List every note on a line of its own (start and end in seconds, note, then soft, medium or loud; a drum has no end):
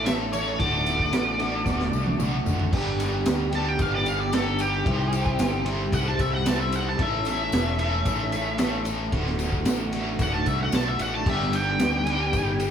0.00 0.56 A1 medium
0.00 0.58 C#4 medium
0.00 0.57 E4 medium
0.00 2.68 A4 medium
0.06 0.58 A2 medium
0.06 0.58 E3 medium
0.06 0.58 A3 medium
0.06 0.59 C#4 medium
0.06 0.59 E4 medium
0.06 0.59 A4 medium
0.06 0.13 E5 medium
0.06 snare loud
0.06 ride loud
0.06 tambourine medium
0.33 0.59 C#5 medium
0.33 ride medium
0.33 tambourine medium
0.58 1.09 D1 loud
0.58 1.37 D2 medium
0.58 1.38 A2 medium
0.58 1.38 D3 loud
0.58 1.38 A3 medium
0.58 2.71 D4 medium
0.58 1.37 F#4 medium
0.58 2.71 F#4 medium
0.58 2.42 D5 medium
0.58 kick loud
0.58 ride loud
0.58 tambourine soft
0.86 snare soft
0.86 ride medium
0.86 tambourine medium
1.00 kick medium
1.13 1.62 A1 medium
1.13 snare loud
1.13 ride medium
1.13 tambourine medium
1.39 2.17 D2 medium
1.39 2.18 A2 medium
1.39 2.18 D3 medium
1.39 2.18 A3 medium
1.39 2.17 F#4 medium
1.39 snare soft
1.39 ride medium
1.39 tambourine soft
1.66 1.90 D1 medium
1.66 kick loud
1.66 snare medium
1.66 tambourine medium
1.80 snare medium
1.93 2.17 C2 medium
1.93 tambourine medium
2.06 high tom medium
2.18 2.44 B1 medium
2.18 2.71 D2 medium
2.18 2.71 A2 medium
2.18 2.71 D3 medium
2.18 2.72 A3 medium
2.18 2.72 F#4 medium
2.18 mid tom medium
2.18 tambourine medium
2.46 2.70 A1 medium
2.46 floor tom loud
2.46 tambourine medium
2.59 floor tom medium
2.71 3.22 G1 loud
2.71 3.50 G2 medium
2.71 3.51 D3 medium
2.71 3.53 G3 loud
2.71 3.51 B3 medium
2.71 4.84 B3 medium
2.71 4.84 D4 medium
2.71 3.51 D4 loud
2.71 4.84 G4 medium
2.71 3.51 G4 loud
2.71 kick loud
2.71 crash loud
3.00 snare soft
3.00 ride medium
3.00 tambourine medium
3.26 3.75 D2 medium
3.26 snare loud
3.26 ride loud
3.26 tambourine medium
3.51 4.30 G2 medium
3.51 4.31 D3 medium
3.51 4.31 G3 medium
3.51 4.31 B3 medium
3.51 4.31 D4 medium
3.51 4.30 G4 medium
3.51 3.68 A5 medium
3.51 snare soft
3.51 ride medium
3.68 3.80 G5 medium
3.79 4.82 G1 loud
3.79 3.94 F5 medium
3.79 kick loud
3.79 ride loud
3.79 tambourine medium
3.95 4.07 D5 medium
4.06 4.20 F5 medium
4.06 ride medium
4.06 tambourine medium
4.20 4.33 D5 medium
4.31 4.84 G2 medium
4.31 4.84 D3 medium
4.31 4.84 G3 medium
4.31 4.84 B3 medium
4.31 4.85 D4 medium
4.31 4.85 G4 medium
4.31 4.60 A4 loud
4.31 snare loud
4.31 ride loud
4.31 tambourine medium
4.59 5.64 G4 medium
4.59 ride medium
4.59 tambourine medium
4.84 5.35 C2 loud
4.84 5.63 C3 loud
4.84 5.64 G3 medium
4.84 6.97 G3 medium
4.84 6.97 C4 medium
4.84 5.64 C4 loud
4.84 9.09 E4 medium
4.84 5.66 E4 loud
4.84 5.64 G4 medium
4.84 5.64 C5 loud
4.84 kick loud
4.84 ride loud
5.13 ride medium
5.13 tambourine medium
5.26 kick medium
5.39 5.89 G1 medium
5.39 snare loud
5.39 ride loud
5.39 tambourine loud
5.65 6.44 C3 medium
5.65 6.44 G3 medium
5.65 6.45 C4 medium
5.65 6.44 E4 medium
5.65 6.44 G4 medium
5.65 6.44 C5 medium
5.65 ride medium
5.92 6.95 C2 medium
5.92 6.06 F#5 loud
5.92 kick loud
5.92 ride loud
5.92 tambourine medium
6.08 6.20 A5 medium
6.19 6.34 E5 medium
6.19 kick medium
6.19 ride medium
6.19 tambourine medium
6.34 6.47 F#5 loud
6.45 6.97 C3 medium
6.45 6.98 G3 medium
6.45 6.98 C4 medium
6.45 6.98 E4 medium
6.45 6.98 G4 medium
6.45 6.99 C5 medium
6.45 6.60 A5 medium
6.45 snare loud
6.45 ride loud
6.45 tambourine loud
6.60 6.76 E5 loud
6.72 6.87 F#5 medium
6.72 ride medium
6.72 tambourine medium
6.89 7.00 A5 medium
6.98 7.48 A1 loud
6.98 7.77 A2 loud
6.98 7.77 E3 medium
6.98 7.80 A3 loud
6.98 9.12 A3 medium
6.98 7.78 C#4 loud
6.98 9.12 C#4 medium
6.98 7.78 E4 loud
6.98 7.78 A4 loud
6.98 kick loud
6.98 ride loud
7.02 7.27 E5 medium
7.25 8.83 E5 loud
7.25 snare soft
7.25 ride medium
7.25 tambourine medium
7.52 8.02 E1 medium
7.52 snare loud
7.52 ride loud
7.52 tambourine loud
7.78 8.57 A2 medium
7.78 8.58 E3 medium
7.78 8.58 A3 medium
7.78 8.58 C#4 medium
7.78 8.58 E4 medium
7.78 8.57 A4 medium
7.78 ride medium
8.05 9.09 A1 medium
8.05 kick loud
8.05 ride loud
8.05 tambourine medium
8.32 ride medium
8.32 tambourine medium
8.58 9.11 A2 medium
8.58 9.11 E3 medium
8.58 9.11 A3 medium
8.58 9.11 C#4 medium
8.58 9.12 E4 medium
8.58 9.12 A4 medium
8.58 snare loud
8.58 ride loud
8.58 tambourine loud
8.85 ride medium
8.85 tambourine medium
9.12 9.62 D1 loud
9.12 9.91 D2 medium
9.12 9.91 A2 loud
9.12 9.92 D3 loud
9.12 9.91 A3 loud
9.12 11.25 A3 medium
9.12 12.71 D4 medium
9.12 9.90 F#4 loud
9.12 11.25 F#4 loud
9.12 kick loud
9.12 ride loud
9.26 snare soft
9.39 snare soft
9.39 ride medium
9.39 tambourine medium
9.52 kick medium
9.65 10.16 A1 medium
9.65 snare loud
9.65 ride medium
9.65 tambourine medium
9.91 10.71 D2 medium
9.91 10.71 A2 medium
9.91 10.72 D3 medium
9.91 10.71 A3 medium
9.91 10.71 F#4 medium
9.91 snare soft
9.91 ride medium
9.91 tambourine soft
10.19 10.44 D1 medium
10.19 10.34 F#5 loud
10.19 kick loud
10.19 ride loud
10.19 tambourine medium
10.34 10.47 A5 medium
10.46 10.70 C2 medium
10.46 10.60 E5 medium
10.46 kick medium
10.46 ride medium
10.46 tambourine medium
10.63 10.75 F#5 medium
10.72 10.97 B1 medium
10.72 11.24 D2 medium
10.72 11.25 A2 medium
10.72 11.24 D3 medium
10.72 11.25 A3 medium
10.72 11.25 F#4 medium
10.72 10.87 A5 medium
10.72 snare loud
10.72 ride loud
10.72 tambourine loud
10.88 11.00 E5 medium
10.99 11.24 A1 medium
10.99 11.14 F#5 medium
10.99 ride medium
10.99 tambourine medium
11.15 11.27 A5 medium
11.24 11.76 G1 loud
11.24 12.04 G2 medium
11.24 12.04 D3 loud
11.24 12.07 G3 loud
11.24 12.05 B3 loud
11.24 12.71 B3 medium
11.24 12.05 D4 loud
11.24 12.05 G4 medium
11.24 kick loud
11.24 crash loud
11.29 12.71 G4 medium
11.29 11.54 E5 medium
11.40 snare soft
11.53 12.71 G5 loud
11.53 ride medium
11.53 tambourine medium
11.79 12.30 D2 medium
11.79 snare loud
11.79 ride loud
11.79 tambourine loud
12.06 12.71 G2 medium
12.06 12.71 D3 medium
12.06 12.71 G3 medium
12.06 12.71 B3 medium
12.06 12.71 D4 medium
12.06 12.71 G4 medium
12.06 snare soft
12.06 ride medium
12.33 12.71 G1 medium
12.33 kick loud
12.33 ride loud
12.33 tambourine medium
12.60 ride medium
12.60 tambourine medium